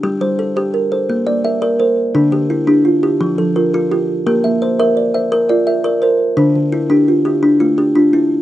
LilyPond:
<<
  \new Staff \with { instrumentName = "Kalimba" } { \time 12/8 \key g \dorian \tempo 4. = 114 << { g'8 c''8 a'4. c''4 d''8 e''4 c''4 | d'8 g'8 e'4. g'4 a'8 bes'4 g'4 | bes'8 e''8 c''4. e''4 d''8 e''4 c''4 | d'4 e'4. g'4 f'8 g'4 e'4 | } \\ { g4 r8 g'4 r8 bes4 r8 bes'4 r8 | d4 r8 d'4 r8 f4 r8 f'4 r8 | bes4 r8 bes'4 r8 bes'4 r8 bes'4 r8 | d4 r8 d'4 r8 d'4 r8 d'4 r8 | } >> }
  \new Staff \with { instrumentName = "Kalimba" } { \time 12/8 \key g \dorian << { r4 a'8 c''4 a'4. bes'8 d''4. | r4 e'8 g'4 e'4. f'8 a'4. | g'4 c''8 e''4 c''4. bes'8 d''4. | c''4 e'8 g'4 e'4. d'8 f'4. | } \\ { r8 g4 r8 bes'4 r8 bes4 r8 bes'4 | r8 d4 r8 f'4 r8 f4 r8 f'4 | r8 bes4 r8 d''4 r8 f'4 r8 bes'4 | r8 d4 r8 f'4 r8 a4 r8 d'4 | } >> }
>>